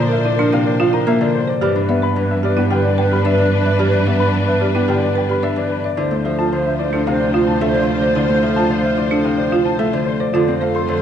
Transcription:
Already playing: cello A#2, harp C3 D3 F3 A#3 C4, string section D4 C5, grand piano C5
0.07 alto flute A#4
0.12 grand piano E5
0.25 marimba E4, grand piano D5
0.35 harp F3, marimba D4, alto flute A#4
0.39 grand piano A#4
0.53 harp C3, marimba E4, grand piano F5
0.63 alto flute A#4, grand piano D5
0.80 marimba F4, grand piano F5
0.92 marimba E4, alto flute A#4, grand piano A#5
1.07 harp A#3, marimba A#4, grand piano E5
1.20 harp D3, alto flute A#4, grand piano D5
1.35 grand piano C5
1.48 marimba C5, grand piano D5
1.61 cello G2, harp E3, string section D4 B4, marimba G4, alto flute B4, grand piano D5
1.75 harp D4, grand piano B4
1.89 harp B3, alto flute B4, marimba D5, grand piano E5
2.02 marimba B4, grand piano B5
2.16 harp E3, grand piano B4, alto flute B4
2.31 grand piano E5
2.43 marimba G4, alto flute B4, grand piano D5
2.57 harp B3, marimba E4, grand piano G4
2.71 harp D3, marimba G4, alto flute B4, grand piano G5
2.85 grand piano D5
2.98 marimba B4, grand piano G5
3.02 alto flute B4
3.12 marimba G4, grand piano B5
3.25 harp D4, marimba D5, grand piano E5
3.30 alto flute B4
3.38 harp E3, grand piano D5
3.53 grand piano B4
3.59 alto flute B4
3.66 grand piano D5, marimba E5
3.79 harp E3, marimba G4, grand piano D5
3.87 alto flute B4
3.93 harp D4, grand piano B4
4.06 harp B3, marimba D5, grand piano E5
4.15 alto flute B4
4.20 marimba B4, grand piano B5
4.34 harp E3, grand piano B4
4.43 alto flute B4
4.48 grand piano E5
4.61 marimba G4, grand piano D5
4.72 harp B3, marimba E4, grand piano G4, alto flute B4
4.88 harp D3, marimba G4, grand piano G5
5.00 alto flute B4, grand piano D5
5.15 marimba B4, grand piano G5
5.28 marimba G4, alto flute B4, grand piano B5
5.43 harp D4, marimba D5, grand piano E5
5.56 harp E3, alto flute B4, grand piano D5
5.71 grand piano B4
5.84 grand piano D5, marimba E5
5.97 cello D2, harp D3, marimba E4, string section F4 C5, alto flute C5, grand piano D5
6.11 harp A3, grand piano C5
6.25 harp F3, marimba A4, alto flute C5, grand piano E5
6.39 marimba F4, grand piano A5
6.52 harp D3, grand piano C5, alto flute C5
6.66 grand piano E5
6.79 marimba E4, alto flute C5, grand piano D5
6.93 harp F3, marimba D4, grand piano A4
7.07 harp C3, marimba E4, alto flute C5, grand piano F5
7.20 grand piano D5
7.33 marimba F4, grand piano F5
7.39 alto flute C5
7.47 marimba E4, grand piano A5
7.61 harp A3, marimba A4, grand piano E5
7.67 alto flute C5
7.74 harp D3, grand piano D5
7.89 grand piano C5
7.95 alto flute C5
8.01 marimba C5, grand piano D5
8.15 harp D3, marimba E4, grand piano D5
8.23 alto flute C5
8.29 harp A3, grand piano C5
8.42 harp F3, marimba A4, grand piano E5
8.51 alto flute C5
8.56 marimba F4, grand piano A5
8.70 harp D3, grand piano C5
8.80 alto flute C5, grand piano E5
8.98 marimba E4, grand piano D5
9.07 harp F3, grand piano A4, alto flute C5
9.11 marimba D4
9.24 harp C3, marimba E4, grand piano F5
9.36 alto flute C5, grand piano D5
9.52 marimba F4, grand piano F5
9.64 marimba E4, alto flute C5, grand piano A5
9.79 harp A3, marimba A4, grand piano E5
9.92 harp D3, alto flute C5, grand piano D5
10.06 grand piano C5
10.20 marimba C5, grand piano D5
10.33 cello F2, harp D3, string section F4 C5, marimba F4, alto flute A4, grand piano D5
10.47 harp C4, grand piano C5
10.61 harp A3, alto flute A4, marimba C5, grand piano F5
10.75 marimba A4, grand piano C6
10.88 harp D3, alto flute A4, grand piano C5

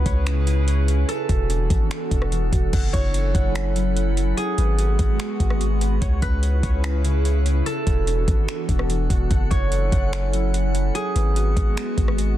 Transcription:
Already playing: ambient pad C#3 C#4 E4 G#4 B4, synth keys C#4, synth texture C#4 B4 E5, harp B4
0.06 808-style bass C#2, synth keys C#5, kick, closed hi-hat
0.26 synth keys C#4, finger snap, closed hi-hat
0.47 synth keys C#3, closed hi-hat
0.68 synth keys C#5, closed hi-hat
0.88 synth keys C#4, closed hi-hat
1.08 ambient pad E3 B3 D4 F#4 A4, synth texture D4 A4 F#5, harp A4, closed hi-hat
1.29 808-style bass E1, synth keys F#4, kick, closed hi-hat
1.50 synth keys D4, closed hi-hat
1.70 808-style bass G#1, kick, closed hi-hat
1.91 finger snap, closed hi-hat
2.11 808-style bass E1, synth keys D4, kick, closed hi-hat
2.22 cross-stick
2.32 synth keys E3, closed hi-hat
2.52 808-style bass E1, synth keys F#4, kick, closed hi-hat
2.73 808-style bass F#1, ambient pad F#3 C#4 E4 A4 G#5, synth texture E4 A4 F#5, synth keys F#5, kick, closed hi-hat, crash
2.93 808-style bass F#1, synth keys E4, harp C#5, kick, closed hi-hat
3.14 closed hi-hat
3.35 808-style bass F#1, synth keys F#5, kick, closed hi-hat
3.55 synth keys E4, finger snap, closed hi-hat
3.76 synth keys F#3, closed hi-hat
3.96 synth keys F#5, closed hi-hat
4.17 synth keys E4, closed hi-hat
4.37 ambient pad G#3 B3 F#4, synth texture B3 G#4 F#5, harp G#4, closed hi-hat
4.58 808-style bass G#1, synth keys B4, closed hi-hat
4.79 synth keys F#4, closed hi-hat
4.99 808-style bass G#1, kick, closed hi-hat
5.20 finger snap, closed hi-hat
5.40 808-style bass G#1, synth keys F#4, kick, closed hi-hat
5.50 cross-stick
5.61 synth keys G#3, closed hi-hat
5.81 synth keys B4, closed hi-hat
6.01 808-style bass C#2, ambient pad C#3 C#4 E4 G#4 B4, synth texture C#4 B4 E5, synth keys C#5, kick, closed hi-hat
6.22 808-style bass C#2, synth keys C#4, harp B4, kick, closed hi-hat
6.43 closed hi-hat
6.63 808-style bass C#2, synth keys C#5, kick, closed hi-hat
6.84 synth keys C#4, finger snap, closed hi-hat
7.04 synth keys C#3, closed hi-hat
7.25 synth keys C#5, closed hi-hat
7.45 synth keys C#4, closed hi-hat
7.66 ambient pad E3 B3 D4 F#4 A4, synth texture D4 A4 F#5, harp A4, closed hi-hat
7.86 808-style bass E1, synth keys F#4, kick, closed hi-hat
8.07 synth keys D4, closed hi-hat
8.28 808-style bass G#1, kick, closed hi-hat
8.48 finger snap, closed hi-hat
8.69 808-style bass E1, synth keys D4, kick, closed hi-hat
8.79 cross-stick
8.90 synth keys E3, closed hi-hat
9.10 808-style bass E1, synth keys F#4, kick, closed hi-hat
9.31 808-style bass F#1, ambient pad F#3 C#4 E4 A4 G#5, synth texture E4, synth keys F#5, kick, closed hi-hat
9.51 808-style bass F#1, synth keys E4, harp C#5, kick, closed hi-hat
9.72 closed hi-hat
9.92 808-style bass F#1, synth keys F#5, kick, closed hi-hat
10.13 finger snap, closed hi-hat
10.33 synth keys F#3, closed hi-hat
10.54 synth keys F#5, closed hi-hat
10.74 synth keys E4, closed hi-hat
10.95 ambient pad G#3 B3 F#4, synth texture B3 G#4, harp G#4, closed hi-hat
11.16 808-style bass G#1, synth keys B4, closed hi-hat
11.36 synth keys F#4, closed hi-hat
11.57 808-style bass G#1, kick, closed hi-hat
11.77 finger snap, closed hi-hat
11.97 808-style bass G#1, synth keys F#4, kick, closed hi-hat
12.08 cross-stick
12.18 synth keys G#3, closed hi-hat

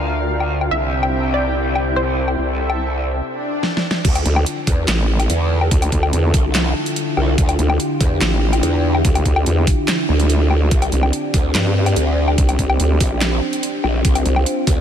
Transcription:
Already playing: wobble bass D2, analog synth pad D3 D4 F4 A#4 F5, synth pluck G5
0.40 low woodblock
0.61 low woodblock
0.71 wobble bass C2, analog synth pad C3 C4 E4 G4 G5, synth pluck E5
1.03 low woodblock
1.34 synth pluck D5
1.75 low woodblock
1.96 synth pluck C5
2.28 low woodblock
2.38 wobble bass C2, analog synth pad A4 E5
2.70 low woodblock
3.21 swell
3.63 snare
3.77 snare
3.91 snare
4.05 wobble bass D2, analog synth pad D3 D4 E4 F4 A4, kick, closed hi-hat, crash
4.15 closed hi-hat, low woodblock
4.26 wobble bass D2, closed hi-hat
4.36 low woodblock
4.46 closed hi-hat
4.67 wobble bass E2, kick, open hi-hat
4.88 wobble bass A1, snare, clap, closed hi-hat
5.20 closed hi-hat, low woodblock
5.30 wobble bass E2, closed hi-hat
5.61 low woodblock
5.71 wobble bass D2, kick, closed hi-hat
5.82 closed hi-hat, low woodblock
5.92 wobble bass D2, kick, closed hi-hat
6.03 low woodblock
6.13 wobble bass E2, closed hi-hat
6.34 wobble bass C2, kick, open hi-hat
6.55 snare, clap, closed hi-hat
6.86 closed hi-hat
6.96 closed hi-hat
7.17 wobble bass C2, low woodblock
7.38 wobble bass D2, analog synth pad G4, kick, closed hi-hat
7.49 closed hi-hat, low woodblock
7.59 wobble bass D2, closed hi-hat
7.70 low woodblock
7.80 closed hi-hat
8.01 wobble bass E2, kick, open hi-hat
8.21 wobble bass A1, snare, clap, closed hi-hat
8.53 closed hi-hat, low woodblock
8.63 wobble bass E2, closed hi-hat
8.95 low woodblock
9.05 wobble bass D2, kick, closed hi-hat
9.15 closed hi-hat, low woodblock
9.25 wobble bass D2, kick, closed hi-hat
9.36 low woodblock
9.46 wobble bass E2, closed hi-hat
9.67 kick, open hi-hat
9.88 snare, clap, closed hi-hat
10.09 wobble bass D2
10.20 closed hi-hat
10.30 closed hi-hat
10.51 low woodblock
10.71 wobble bass C2, analog synth pad C4 G4, kick, closed hi-hat
10.82 closed hi-hat, low woodblock
10.92 wobble bass C2, closed hi-hat
11.03 low woodblock
11.13 closed hi-hat
11.34 wobble bass D2, kick, open hi-hat
11.55 wobble bass G2, snare, clap, closed hi-hat
11.86 closed hi-hat, low woodblock
11.96 wobble bass D2, closed hi-hat
12.28 low woodblock
12.38 wobble bass C2, kick, closed hi-hat
12.49 closed hi-hat, low woodblock
12.59 wobble bass C2, kick, closed hi-hat
12.70 low woodblock
12.80 wobble bass D2, closed hi-hat
13.00 wobble bass A#1, kick, open hi-hat
13.21 snare, clap, closed hi-hat
13.53 closed hi-hat
13.63 closed hi-hat
13.84 wobble bass A#1, low woodblock
14.05 wobble bass C2, analog synth pad F4, kick, closed hi-hat
14.15 closed hi-hat, low woodblock
14.26 wobble bass C2, closed hi-hat
14.36 low woodblock
14.46 closed hi-hat
14.67 wobble bass D2, kick, open hi-hat

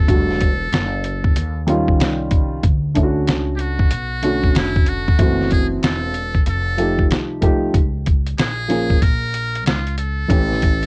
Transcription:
Already playing: muted trumpet A4
0.07 upright bass E1, upright piano D3 G3 A3 F#4, kick, closed hi-hat
0.31 snare
0.41 kick, closed hi-hat
0.72 upright bass F#1, snare, closed hi-hat
1.04 closed hi-hat
1.24 kick
1.36 upright bass D#2, closed hi-hat
1.67 upright piano D#3 G3 C#4 F4, closed hi-hat
1.88 kick
2.00 upright bass C2, snare, closed hi-hat
2.31 kick, closed hi-hat
2.63 upright bass D2, kick, closed hi-hat
2.94 upright piano A3 C#4 D4 E4, kick, closed hi-hat
3.03 upright piano F#4
3.28 upright bass C#2, snare, closed hi-hat
3.56 muted trumpet G4, closed hi-hat
3.61 muted trumpet F#4
3.79 kick
3.91 upright bass B1, closed hi-hat
4.22 upright piano D3 A3 C#4 F#4, closed hi-hat
4.43 kick
4.55 upright bass F1, muted trumpet E4, snare, closed hi-hat
4.76 kick
4.86 muted trumpet F#4, closed hi-hat
5.08 kick
5.18 upright bass F#1, upright piano E3 A3 C4 F#4, kick, closed hi-hat
5.41 snare
5.51 muted trumpet G#4, kick, closed hi-hat
5.83 upright bass E1, muted trumpet A4, snare, closed hi-hat
6.14 closed hi-hat
6.35 kick
6.46 upright bass F1, muted trumpet A4, closed hi-hat
6.77 upright piano F3 A3 D#4 G4, closed hi-hat
6.99 kick
7.10 upright bass C2, snare, closed hi-hat
7.41 upright piano F3 A3 D#4 G4, kick, closed hi-hat
7.74 upright bass C#2, kick, closed hi-hat
8.06 kick, closed hi-hat
8.27 closed hi-hat
8.38 upright bass A#1, muted trumpet G#4, snare, closed hi-hat
8.68 upright piano F3 A#3 C#4 G#4, snare, closed hi-hat
8.90 kick
9.02 upright bass A#1, muted trumpet A#4, kick, closed hi-hat
9.34 closed hi-hat
9.55 closed hi-hat
9.66 upright bass C#2, muted trumpet F4, snare, closed hi-hat
9.87 closed hi-hat
9.98 muted trumpet A4, closed hi-hat
10.28 upright bass A1, upright piano E3 A3 C#4 G4, kick, closed hi-hat
10.52 snare
10.62 kick, closed hi-hat
10.83 closed hi-hat

